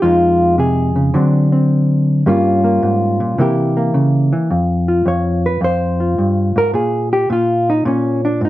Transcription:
0.02 1.14 F2 medium
0.02 1.12 F3 soft
0.02 1.14 G#3 soft
0.02 1.13 D#4 soft
0.02 0.58 F4 medium
0.58 0.95 C3 medium
0.58 2.26 G#4 medium
0.96 1.14 C#3 medium
1.14 2.23 D3 medium
1.14 2.23 F#3 soft
1.14 1.51 C4 medium
1.14 2.24 D4 soft
1.52 2.24 C4 soft
2.26 2.82 G2 medium
2.26 3.36 G3 medium
2.26 2.63 A#3 medium
2.26 3.36 C#4 medium
2.26 3.39 F4 medium
2.64 3.35 A#3 medium
2.83 3.20 G#2 medium
3.20 3.38 A#2 medium
3.38 3.94 C3 medium
3.38 4.31 E3 medium
3.38 3.76 A#3 medium
3.38 4.48 E4 medium
3.38 4.49 G4 medium
3.77 4.48 A#3 medium
3.94 4.31 C#3 medium
4.33 4.50 E3 medium
4.51 5.04 F2 medium
4.88 6.00 F4 soft
5.06 5.60 F2 medium
5.06 5.44 C#5 medium
5.46 5.62 B4 medium
5.61 6.17 F2 medium
5.61 6.56 C5 medium
6.00 7.16 F4 soft
6.18 6.55 G2 medium
6.56 6.73 G#2 soft
6.56 6.74 A#4 loud
6.74 7.29 A#2 medium
6.74 7.12 G#4 medium
7.13 7.30 G4 medium
7.30 7.84 A#2 medium
7.30 7.68 F4 medium
7.70 7.86 D#4 medium
7.85 8.49 A#2 medium
7.85 8.24 C#4 medium
8.25 8.42 D4 medium
8.41 8.49 G#2 medium
8.41 8.49 D#4 medium

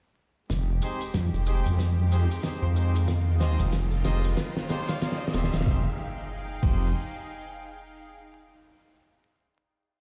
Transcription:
0.50 0.80 F1 loud
0.50 5.62 D#3 medium
0.50 5.62 G#3 medium
0.50 5.65 D#4 medium
0.50 3.06 G4 medium
0.50 kick medium
0.50 snare soft
0.50 closed hi-hat medium
0.50 riser medium
0.50 maracas soft
0.73 5.67 G#3 medium
0.82 1.03 C4 medium
0.82 1.03 D#4 medium
0.82 1.03 G4 medium
0.82 1.03 G#4 medium
0.82 1.03 C5 loud
0.82 maracas medium
1.01 closed hi-hat medium
1.01 maracas medium
1.14 1.31 F2 loud
1.14 kick loud
1.14 snare medium
1.14 closed hi-hat medium
1.14 maracas soft
1.33 1.63 F1 loud
1.33 closed hi-hat medium
1.46 1.67 C4 medium
1.46 1.67 D#4 medium
1.46 1.67 G4 medium
1.46 1.67 G#4 medium
1.46 1.67 C5 medium
1.46 cross-stick soft
1.46 maracas medium
1.66 2.27 F2 medium
1.66 closed hi-hat medium
1.66 maracas medium
1.70 5.66 F5 medium
1.79 kick medium
1.79 snare medium
1.79 closed hi-hat medium
1.79 maracas soft
1.83 5.66 G5 medium
2.12 2.32 C4 loud
2.12 2.32 D#4 medium
2.12 2.32 G4 medium
2.12 2.32 G#4 medium
2.12 2.32 C5 loud
2.12 maracas medium
2.31 closed hi-hat medium
2.31 maracas medium
2.34 closed hi-hat medium
2.41 kick loud
2.41 closed hi-hat soft
2.44 2.64 C4 medium
2.44 2.64 D#4 medium
2.44 2.64 G4 medium
2.44 2.64 G#4 medium
2.44 2.64 C5 loud
2.44 snare medium
2.44 closed hi-hat medium
2.44 closed hi-hat soft
2.44 maracas soft
2.51 closed hi-hat soft
2.56 closed hi-hat soft
2.62 3.28 F2 medium
2.62 2.71 C5 medium
2.62 cross-stick soft
2.76 2.96 C4 medium
2.76 2.96 D#4 medium
2.76 2.96 G4 medium
2.76 2.96 G#4 medium
2.76 2.96 C5 medium
2.76 2.88 C5 medium
2.76 maracas medium
2.95 cross-stick medium
2.95 closed hi-hat medium
2.95 maracas medium
3.08 5.64 F4 medium
3.08 kick loud
3.08 snare medium
3.08 closed hi-hat medium
3.08 maracas soft
3.28 3.56 E2 medium
3.40 3.61 C4 loud
3.40 3.61 D#4 medium
3.40 3.61 G4 medium
3.40 3.61 G#4 medium
3.40 3.61 C5 loud
3.40 3.47 C5 medium
3.40 3.60 D#5 loud
3.40 snare medium
3.40 maracas medium
3.59 4.03 F1 loud
3.59 closed hi-hat medium
3.59 maracas medium
3.72 kick loud
3.72 snare medium
3.72 closed hi-hat medium
3.72 maracas soft
3.91 closed hi-hat medium
4.04 4.35 F1 loud
4.04 4.25 C4 medium
4.04 4.25 D#4 medium
4.04 4.25 G4 medium
4.04 4.25 G#4 medium
4.04 4.25 C5 loud
4.04 4.24 D#5 loud
4.04 snare medium
4.04 maracas loud
4.24 closed hi-hat medium
4.24 maracas medium
4.37 kick loud
4.37 snare loud
4.37 closed hi-hat medium
4.37 maracas soft
4.57 snare medium
4.69 4.90 C4 loud
4.69 4.90 D#4 loud
4.69 4.90 G4 medium
4.69 4.90 G#4 medium
4.69 4.90 C5 loud
4.69 snare medium
4.69 maracas loud
4.89 4.97 F5 medium
4.89 snare medium
4.89 closed hi-hat medium
4.89 maracas medium
5.02 5.22 C4 medium
5.02 5.22 D#4 medium
5.02 5.22 G4 medium
5.02 5.22 G#4 medium
5.02 5.22 C5 loud
5.02 5.14 F5 medium
5.02 kick loud
5.02 snare loud
5.02 closed hi-hat medium
5.02 maracas soft
5.12 snare medium
5.28 snare loud
5.34 5.50 D#1 loud
5.34 5.54 C4 medium
5.34 5.54 D#4 medium
5.34 5.54 G4 medium
5.34 5.54 G#4 medium
5.34 5.54 C5 medium
5.34 snare loud
5.34 snare medium
5.34 maracas medium
5.44 snare loud
5.53 5.64 D#1 loud
5.53 snare loud
5.53 closed hi-hat medium
5.53 maracas medium
5.61 snare loud
5.66 5.87 F1 medium
5.66 5.96 D#3 medium
5.66 5.96 G#3 medium
5.66 5.87 C4 medium
5.66 8.21 D#4 medium
5.66 5.87 D#4 medium
5.66 5.96 G4 medium
5.66 5.87 G4 medium
5.66 5.87 G#4 medium
5.66 5.87 C5 medium
5.66 kick loud
5.66 snare medium
5.66 impact medium
5.77 8.20 G#4 medium
5.87 8.20 F5 medium
5.96 8.20 G5 medium
6.63 6.93 F1 loud
6.63 6.88 C4 medium
6.63 6.88 D#4 medium
6.63 6.88 G4 medium
6.63 6.88 G#4 medium
6.63 6.88 C5 medium
6.63 kick loud
6.63 crash medium

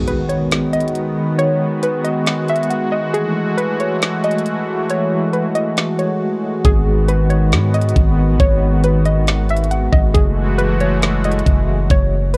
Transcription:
0.00 3.11 D#3 medium
0.00 10.11 G#3 medium
0.00 3.11 B3 medium
0.00 10.11 F#4 medium
0.00 impact medium
0.08 0.28 B4 medium
0.08 closed hi-hat medium
0.29 0.70 C#5 medium
0.29 closed hi-hat medium
0.51 snare loud
0.51 closed hi-hat medium
0.73 1.35 D#5 medium
0.73 closed hi-hat medium
0.81 closed hi-hat medium
0.88 closed hi-hat medium
0.95 closed hi-hat medium
1.39 1.80 C#5 loud
1.39 closed hi-hat medium
1.83 2.04 B4 medium
1.83 closed hi-hat medium
2.04 2.46 D#5 medium
2.04 closed hi-hat medium
2.27 snare loud
2.27 closed hi-hat medium
2.49 2.70 E5 medium
2.49 closed hi-hat medium
2.56 closed hi-hat medium
2.63 closed hi-hat medium
2.70 2.91 F#5 medium
2.70 closed hi-hat medium
2.92 3.13 D#5 medium
3.14 6.61 E3 medium
3.14 6.61 A3 medium
3.14 3.55 G#4 loud
3.14 closed hi-hat medium
3.57 3.79 B4 loud
3.57 closed hi-hat medium
3.80 4.21 C#5 medium
3.80 closed hi-hat medium
4.02 snare loud
4.02 closed hi-hat medium
4.24 4.86 D#5 medium
4.24 closed hi-hat medium
4.31 closed hi-hat medium
4.38 closed hi-hat medium
4.46 closed hi-hat medium
4.90 5.31 C#5 loud
4.90 closed hi-hat medium
5.33 5.54 B4 medium
5.33 closed hi-hat medium
5.55 5.96 D#5 medium
5.55 closed hi-hat medium
5.77 snare loud
5.77 closed hi-hat medium
5.99 6.20 C#5 medium
5.99 closed hi-hat medium
6.65 7.54 G#1 loud
6.65 10.11 D#3 medium
6.65 10.12 B3 medium
6.65 7.06 G#4 loud
6.65 kick loud
6.65 closed hi-hat medium
7.08 7.29 B4 medium
7.08 closed hi-hat medium
7.30 7.71 C#5 medium
7.30 closed hi-hat medium
7.52 7.94 G#2 loud
7.52 snare loud
7.52 closed hi-hat medium
7.74 8.36 D#5 medium
7.74 closed hi-hat medium
7.81 closed hi-hat medium
7.89 closed hi-hat medium
7.96 8.30 G#1 loud
7.96 kick loud
7.96 closed hi-hat medium
8.29 8.39 A1 loud
8.40 9.89 G#1 loud
8.40 8.81 C#5 loud
8.40 kick loud
8.40 closed hi-hat medium
8.84 9.05 B4 medium
8.84 closed hi-hat medium
9.05 9.47 D#5 medium
9.05 closed hi-hat medium
9.27 snare loud
9.27 closed hi-hat medium
9.49 9.71 E5 medium
9.49 closed hi-hat medium
9.57 closed hi-hat medium
9.64 closed hi-hat medium
9.71 9.92 F#5 medium
9.71 closed hi-hat medium
9.93 10.14 G#1 loud
9.93 10.14 D#5 medium
9.93 kick loud
10.14 11.42 F#1 loud
10.14 12.37 E3 medium
10.14 12.37 G#3 medium
10.14 12.37 A3 medium
10.14 12.37 F#4 medium
10.14 10.56 G#4 loud
10.14 kick loud
10.14 closed hi-hat medium
10.58 10.79 B4 loud
10.58 closed hi-hat medium
10.81 11.22 C#5 medium
10.81 closed hi-hat medium
11.03 snare loud
11.03 closed hi-hat medium
11.24 11.86 D#5 medium
11.24 closed hi-hat medium
11.32 closed hi-hat medium
11.39 closed hi-hat medium
11.46 11.88 F#1 loud
11.46 kick loud
11.46 closed hi-hat medium
11.90 12.37 F#1 loud
11.90 12.32 C#5 loud
11.90 kick loud
11.90 closed hi-hat medium
12.34 12.37 B4 medium
12.34 closed hi-hat medium

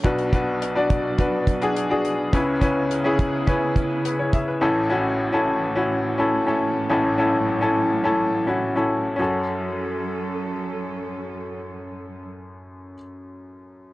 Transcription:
0.04 2.29 B1 medium
0.04 2.30 B2 medium
0.04 2.29 B2 medium
0.04 2.30 F#3 medium
0.04 0.31 D4 medium
0.04 2.31 D4 medium
0.04 0.31 F#4 medium
0.04 0.31 B4 medium
0.04 kick medium
0.04 closed hi-hat medium
0.19 closed hi-hat soft
0.33 0.73 D4 medium
0.33 0.73 F#4 medium
0.33 0.73 B4 medium
0.33 kick medium
0.33 closed hi-hat medium
0.62 closed hi-hat medium
0.75 1.15 D4 medium
0.75 1.16 F#4 medium
0.75 1.16 D5 medium
0.90 kick medium
0.90 closed hi-hat medium
1.18 1.58 D4 medium
1.18 1.59 F#4 medium
1.18 1.59 B4 medium
1.18 kick medium
1.18 closed hi-hat medium
1.47 kick medium
1.47 closed hi-hat medium
1.61 1.88 D4 medium
1.61 1.88 F#4 medium
1.61 1.89 G#4 medium
1.61 closed hi-hat soft
1.77 closed hi-hat medium
1.90 2.30 D4 medium
1.90 2.30 F#4 medium
1.90 2.31 G#4 medium
2.05 closed hi-hat medium
2.33 4.58 C#2 medium
2.33 4.60 C#3 medium
2.33 4.58 C#3 medium
2.33 4.60 B3 medium
2.33 2.59 C#4 medium
2.33 4.60 E4 medium
2.33 2.60 E4 medium
2.33 2.60 B4 medium
2.33 kick medium
2.33 closed hi-hat medium
2.61 3.01 C#4 medium
2.61 3.01 E4 medium
2.61 3.02 B4 medium
2.61 kick medium
2.61 closed hi-hat medium
2.91 closed hi-hat medium
3.04 3.44 C#4 medium
3.04 3.45 E4 medium
3.04 3.45 G#4 medium
3.19 kick medium
3.19 closed hi-hat medium
3.47 3.87 C#4 medium
3.47 3.76 E4 medium
3.47 3.76 B4 medium
3.47 kick medium
3.47 closed hi-hat medium
3.76 kick medium
3.76 closed hi-hat medium
4.05 4.18 B4 soft
4.05 closed hi-hat medium
4.19 4.33 E4 soft
4.19 4.32 C#5 medium
4.33 4.47 G#4 soft
4.33 4.47 E5 medium
4.33 kick medium
4.33 closed hi-hat medium
4.48 4.75 B4 medium
4.61 6.86 A1 medium
4.61 6.86 A2 medium
4.61 9.15 A2 medium
4.61 6.88 E3 medium
4.61 4.88 C#4 medium
4.61 9.15 C#4 medium
4.61 4.88 E4 medium
4.61 4.89 A4 medium
4.90 5.30 C#4 medium
4.90 5.30 E4 medium
4.90 5.31 F#4 medium
5.32 5.73 C#4 medium
5.32 5.73 E4 medium
5.32 5.73 A4 medium
5.75 6.16 C#4 medium
5.75 6.16 E4 medium
5.75 6.16 F#4 medium
6.18 6.45 C#4 medium
6.18 6.45 E4 medium
6.18 6.46 A4 medium
6.47 6.87 C#4 medium
6.47 6.87 E4 medium
6.47 6.88 A4 medium
6.90 9.15 A1 medium
6.90 9.15 A2 medium
6.90 9.17 F#3 soft
6.90 7.16 C#4 medium
6.90 7.17 E4 medium
6.90 7.17 A4 medium
7.18 7.58 C#4 medium
7.18 7.59 E4 medium
7.18 7.59 A4 medium
7.61 8.01 C#4 medium
7.61 8.02 E4 medium
7.61 8.02 A4 medium
8.04 8.44 C#4 medium
8.04 8.45 E4 medium
8.04 8.45 A4 medium
8.47 8.74 C#4 medium
8.47 8.74 E4 medium
8.47 8.75 F#4 medium
8.76 9.15 C#4 medium
8.76 9.16 E4 medium
8.76 9.17 A4 medium
9.16 12.94 F#2 medium
9.16 12.24 F#3 medium
9.16 12.92 C#4 medium
9.16 12.24 C#4 medium
9.16 12.94 F#4 medium
9.16 12.24 A4 medium
9.22 12.95 A4 medium

